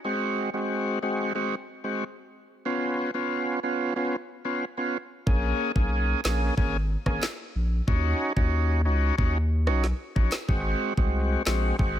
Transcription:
0.05 G#3 C4 F#4
0.54 G#3 C4 F#4
1.03 G#3 C4 F#4
1.35 G#3 C4 F#4
1.84 G#3 C4 F#4
2.65 B3 C#4 F4
3.14 B3 C#4 F4
3.63 B3 C#4 F4
3.96 B3 C#4 F4
4.45 B3 C#4 F4
4.77 B3 C#4 F4
5.26 A#1 A#3 C#4 G#4, kick
5.75 B1 A#3 C#4 G#4, kick
6.24 A#1 A#3 C#4 G#4, snare, clap
6.57 G#1 A#3 C#4 G#4, kick
7.06 G#1 A#3 C#4 G#4, kick, cross-stick
7.23 snare, clap
7.55 A#1
7.87 D#2 C#4 D#4 F#4, kick
8.36 D#2 C#4 D#4 F#4, kick
8.85 C#2 C#4 D#4 F#4
9.18 D#2 C#4 D#4 F#4, kick
9.67 B1 C#4 D#4 F#4, cross-stick
9.84 snare
10.16 A#1 C#4 D#4 F#4, kick
10.32 snare, clap
10.48 G#1 G#3 C4 F#4, kick
10.97 C2 G#3 C4 F#4, kick
11.46 A#1 G#3 C4 F#4, snare, clap
11.79 G#1 G#3 C4 F#4, kick

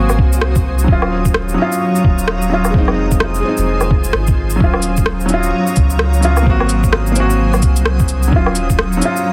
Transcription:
Already playing: G#1 A#3 C4 F#4 C5 G#5 D#6
0.09 low woodblock, shaker
0.18 C2, kick
0.33 shaker
0.41 cross-stick
0.56 kick, shaker
0.79 shaker
0.84 F#3 C#5 A#5
0.88 D#1 C#4, kick
0.92 F4
1.02 low woodblock
1.25 kick, shaker
1.34 cross-stick
1.49 shaker
1.54 F#3 C#4
1.62 F4
1.72 shaker
1.96 shaker
2.04 D#1, kick
2.18 shaker
2.28 cross-stick
2.42 shaker
2.50 F#3 C#4 F4
2.65 low woodblock, shaker
2.70 F1 G#3 F4 C5 G#5
2.74 C4 D#4, kick
2.88 low woodblock
3.11 kick, shaker
3.20 cross-stick
3.34 shaker
3.40 G#3
3.44 C4 D#4
3.57 F1, shaker
3.81 low woodblock, shaker
3.91 kick
4.04 shaker
4.13 G#1, cross-stick
4.27 kick, shaker
4.50 shaker
4.56 F#3
4.60 D#1 F#3 C#4 F4 C#5 A#5 D#6, kick
4.74 low woodblock
4.82 cabasa
4.97 kick, shaker
5.06 cross-stick
5.20 shaker
5.26 F#3, cabasa
5.30 C#4 F4
5.43 shaker
5.67 shaker
5.76 C#2, kick, cabasa
5.90 shaker
5.99 cross-stick
6.14 shaker
6.21 F#3 C#4 F4, cabasa
6.37 low woodblock, shaker
6.42 A#3 C4
6.46 G#1 F#4 C5 G#5, kick
6.60 low woodblock
6.69 cabasa
6.84 kick, shaker
6.93 cross-stick
7.07 shaker
7.12 A#3
7.16 C4, cabasa
7.20 F#4
7.30 shaker
7.54 low woodblock, shaker
7.62 C2, kick, cabasa
7.76 cabasa, shaker
7.86 cross-stick
8.00 kick, shaker
8.08 cabasa
8.23 shaker
8.28 F#3 A#5
8.32 D#1 C#4 F4 C#5, kick
8.46 low woodblock
8.55 cabasa
8.70 kick, shaker
8.79 cross-stick
8.92 shaker
8.97 F#3
9.01 C#4, cabasa
9.05 F4
9.16 shaker

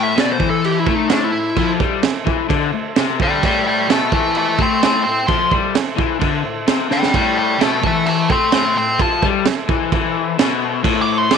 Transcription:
Already playing: A2 A4 C5 E5
0.03 E5
0.16 B2 D5, snare, crash
0.32 C5
0.40 E3, kick
0.50 A4
0.64 G4, crash
0.79 E4
0.86 A3, kick
0.96 D#4
1.09 A2 D4, snare, crash
1.24 E4
1.33 A2
1.56 F3, kick, crash
1.80 G3, kick
2.03 muted overdriven electric guitar stroke, snare, crash
2.26 E3, kick
2.49 D3, kick, crash
2.73 A2
2.96 C3, snare, crash
3.20 D3 D5, kick
3.24 G5
3.43 A2 A4 D5 G5, kick, crash
3.48 C5 E5
3.68 D5 G5
3.89 B2 E5 A5, snare, crash
4.01 snare
4.12 E3 E5 A5, kick
4.35 E5 A5, crash
4.59 A3 G5 C6, kick
4.83 A2 G5 C6, snare, crash
5.03 A2 G5 C6
5.27 F3 C6, kick, crash
5.51 G3, kick
5.75 muted overdriven electric guitar stroke, snare, crash
5.97 E3, kick
6.20 D3, kick, crash
6.45 A2
6.67 C3, snare, crash
6.79 snare
6.90 D3 D5 G5, snare
7.03 snare
7.14 A2 A4 D5 G5, kick, crash
7.20 C5 E5
7.38 D5 G5
7.59 B2 E5 A5, snare, crash
7.82 E3, kick
7.87 E5 A5
8.06 E5 A5, crash
8.30 A3 G5 C6, kick
8.52 A2 G5 C6, snare, crash
8.76 A2 G5 C6
8.99 F3 A5, kick, crash
9.22 G3, kick
9.45 muted overdriven electric guitar stroke, snare, crash
9.69 E3, kick
9.92 E3, kick, crash
10.39 B2, snare, crash
10.80 A2 A4 C5
10.84 E5, kick, crash
11.02 D6
11.18 C6
11.31 B2 D6, snare, crash

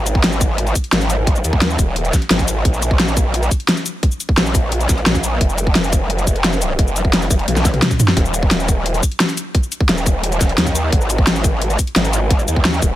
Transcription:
Already playing: G#1
0.06 closed hi-hat, cabasa
0.15 kick
0.24 snare, closed hi-hat
0.32 cabasa
0.41 kick, closed hi-hat, cabasa
0.58 closed hi-hat
0.67 closed hi-hat, cabasa
0.75 kick, closed hi-hat, cabasa
0.84 closed hi-hat
0.93 G#1, snare, closed hi-hat
1.01 closed hi-hat, cabasa
1.10 closed hi-hat, cabasa
1.27 kick, closed hi-hat
1.36 cabasa
1.44 D#2, closed hi-hat, cabasa
1.53 kick
1.62 snare, closed hi-hat
1.70 cabasa
1.79 D#1, kick, closed hi-hat, cabasa
1.96 closed hi-hat
2.05 closed hi-hat, cabasa
2.13 kick, snare, closed hi-hat, cabasa
2.22 closed hi-hat
2.30 G#1, snare, closed hi-hat
2.39 kick, closed hi-hat, cabasa
2.48 closed hi-hat, cabasa
2.65 A#1, kick, closed hi-hat
2.74 cabasa
2.82 closed hi-hat, cabasa
2.91 kick
3.00 snare, closed hi-hat
3.08 cabasa
3.17 kick, closed hi-hat, cabasa
3.34 closed hi-hat
3.43 closed hi-hat, cabasa
3.51 kick, closed hi-hat, cabasa
3.60 closed hi-hat
3.69 snare, closed hi-hat
3.77 closed hi-hat, cabasa
3.86 closed hi-hat, cabasa
4.03 kick, closed hi-hat
4.12 cabasa
4.20 closed hi-hat, cabasa
4.29 kick
4.37 A#1, snare, closed hi-hat
4.46 cabasa
4.55 kick, closed hi-hat, cabasa
4.72 closed hi-hat
4.80 closed hi-hat, cabasa
4.89 A#1, kick, snare, closed hi-hat, cabasa
4.98 closed hi-hat
5.06 A#1, snare, closed hi-hat
5.15 kick, closed hi-hat, cabasa
5.24 closed hi-hat, cabasa
5.41 F1, kick, closed hi-hat
5.49 cabasa
5.58 closed hi-hat, cabasa
5.67 kick
5.75 snare, closed hi-hat
5.84 cabasa
5.93 kick, closed hi-hat, cabasa
6.10 closed hi-hat
6.18 closed hi-hat, cabasa
6.27 F1, kick, closed hi-hat, cabasa
6.36 closed hi-hat
6.44 snare, closed hi-hat
6.53 closed hi-hat, cabasa
6.62 closed hi-hat, cabasa
6.79 F1, kick, closed hi-hat
6.88 cabasa
6.96 closed hi-hat, cabasa
7.05 kick
7.13 snare, closed hi-hat
7.22 cabasa
7.30 F1, kick, closed hi-hat, cabasa
7.39 closed hi-hat
7.48 B1, closed hi-hat, high tom
7.56 snare, closed hi-hat, cabasa
7.65 kick, snare, closed hi-hat, cabasa
7.74 closed hi-hat, mid tom
7.82 snare, closed hi-hat, mid tom
7.91 kick, closed hi-hat, cabasa
8.00 closed hi-hat, mid tom, cabasa
8.08 snare
8.17 D#1, kick, closed hi-hat
8.25 cabasa
8.34 closed hi-hat, cabasa
8.43 kick
8.51 snare, closed hi-hat
8.60 cabasa
8.68 kick, closed hi-hat, cabasa
8.86 closed hi-hat
8.94 closed hi-hat, cabasa
9.03 kick, closed hi-hat, cabasa
9.12 closed hi-hat
9.20 snare, closed hi-hat
9.29 closed hi-hat, cabasa
9.37 closed hi-hat, cabasa
9.55 kick, closed hi-hat
9.63 cabasa
9.72 closed hi-hat, cabasa
9.80 kick
9.89 D#1, snare, closed hi-hat
9.98 cabasa
10.06 kick, closed hi-hat, cabasa
10.24 closed hi-hat
10.32 closed hi-hat, cabasa
10.41 D#1, kick, snare, closed hi-hat, cabasa
10.49 closed hi-hat
10.58 D#2, snare, closed hi-hat
10.67 kick, closed hi-hat, cabasa
10.75 closed hi-hat, cabasa
10.92 G#1, kick, closed hi-hat
11.01 cabasa
11.10 closed hi-hat, cabasa
11.18 kick
11.27 snare, closed hi-hat
11.36 cabasa
11.44 kick, closed hi-hat, cabasa
11.62 closed hi-hat
11.70 closed hi-hat, cabasa
11.79 kick, closed hi-hat, cabasa
11.87 closed hi-hat
11.96 G#1, snare, closed hi-hat
12.05 closed hi-hat, cabasa
12.13 closed hi-hat, cabasa
12.31 kick, closed hi-hat
12.39 cabasa
12.48 D#2, closed hi-hat, cabasa
12.56 kick
12.65 snare, closed hi-hat
12.74 cabasa
12.82 D#1, kick, closed hi-hat, cabasa

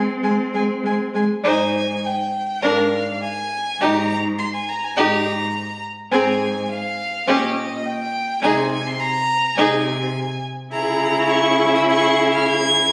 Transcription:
Already playing: C4
0.23 G#3 G#5 C6
0.53 G#3 G#5 C6
0.83 G#3 G#5 C6
1.14 G#3 G#5 C6
1.44 G#2 D#4 C5 G#5
2.05 G5
2.62 G#2 D4 A#4 F5
3.22 G#5
3.80 G#2 D#4 G4 A#5
4.09 A#5
4.38 C6
4.54 G#5
4.69 A#5
4.84 G#5
4.97 G#2 D#4 G4 A#5
6.12 G#2 C4 G#4 G#5
6.18 A#5
6.25 G#5
6.70 F5
7.27 A#2 C#4 G4 D#5
7.85 G5
8.41 C3 D#4 G#4 G#5
8.70 G#5
8.86 C6
9.00 A#5
9.56 C3 D#4 G#4 G#5
10.72 C#3 E4 G#4 A#5
11.30 C#6
11.75 E6
11.89 C#6
12.33 F6
12.47 G#6

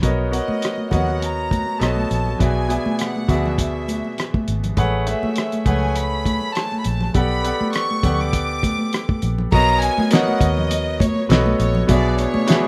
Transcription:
0.02 B1 B3 F#4 A#4 C#5 D#5, kick, closed hi-hat, muted conga
0.31 B3 F#4 A#4 C#5 D#5 F#5, closed hi-hat
0.48 muted fingered electric bass stroke, high conga
0.62 cross-stick, closed hi-hat
0.78 high conga
0.91 D#2 B3 F#4 A#4 C#5 D#5 F#5, kick, cross-stick, closed hi-hat, low conga
1.08 low conga
1.21 A#5, closed hi-hat, muted conga
1.51 kick, closed hi-hat, high conga
1.66 high conga
1.79 B1 B3 F#4 A4 C#5 D#5 A5, cross-stick, closed hi-hat, muted conga
1.97 high conga
2.10 A#1, closed hi-hat, muted conga
2.26 low conga
2.39 B1 B2 B3 F#4 G#4 D5 E5 G#5, kick, closed hi-hat
2.68 B2 B3 F#4 G#4 D5 E5, closed hi-hat, muted conga
2.86 muted fingered electric bass stroke, high conga
2.99 F#5, cross-stick, closed hi-hat
3.16 high conga
3.28 D2 B2 B3 F#4 G#4 D5 E5, kick, closed hi-hat, muted conga, low conga
3.46 E5, low conga
3.58 kick, closed hi-hat, muted conga
3.88 closed hi-hat, muted conga, high conga
4.05 high conga
4.18 cross-stick, closed hi-hat, muted conga
4.34 kick, high conga
4.48 G#1, closed hi-hat
4.63 closed hi-hat, low conga
4.77 A1 A3 G#4 B4 C#5 F#5, kick, closed hi-hat
5.06 A3 G#4 B4 C#5 E5, closed hi-hat, muted conga
5.23 muted fingered electric bass stroke, high conga
5.36 cross-stick, closed hi-hat, muted conga
5.52 closed hi-hat, high conga
5.65 C#2 A3 G#4 B4 C#5 F#5 G#5, kick, closed hi-hat, low conga
5.83 low conga
5.96 B5, closed hi-hat, muted conga
6.25 kick, closed hi-hat, muted conga, high conga
6.41 high conga
6.55 A5, cross-stick, closed hi-hat, muted conga
6.72 high conga
6.79 B5
6.84 A#1 A5, closed hi-hat, muted conga
7.00 cross-stick, low conga
7.14 B1 B3 G4 A4 D5 F#5 B5, kick, closed hi-hat, muted conga
7.44 B3 G4 A4 D5 F#5, closed hi-hat
7.61 muted fingered electric bass stroke, high conga
7.73 C#6, cross-stick, closed hi-hat, muted conga
7.91 high conga
8.03 D2 B3 G4 A4 D5 F#5, kick, cross-stick, closed hi-hat, muted conga, low conga
8.19 D6, low conga
8.33 kick, closed hi-hat
8.63 kick, closed hi-hat, muted conga, high conga
8.79 high conga
8.93 cross-stick, closed hi-hat, muted conga
9.09 kick, high conga
9.22 A#1, closed hi-hat, muted conga
9.38 low conga
9.52 B1 B3 F#4 A#4 C#5 D#5 A#5, kick, crash
9.82 G#5, closed hi-hat
9.98 muted fingered electric bass stroke, high conga
10.11 B3 F#4 A#4 C#5 D#5 F#5, snare, closed hi-hat, muted conga
10.28 high conga
10.41 D#2 D#5, kick, closed hi-hat
10.57 low conga
10.71 closed hi-hat, muted conga
11.00 C#5, kick, closed hi-hat, muted conga, high conga
11.16 high conga
11.29 B1 B3 F#4 A4 B4 C#5 D#5, snare, closed hi-hat
11.46 high conga
11.60 A#1 C#5, closed hi-hat
11.75 low conga
11.87 B1 B2 B3 D4 F#4 G#4 D5 E5, kick, closed hi-hat, muted conga
12.18 C#5, closed hi-hat, muted conga
12.34 muted fingered electric bass stroke, high conga
12.47 B2 B3 D4 F#4 G#4 E5, snare, closed hi-hat
12.64 high conga

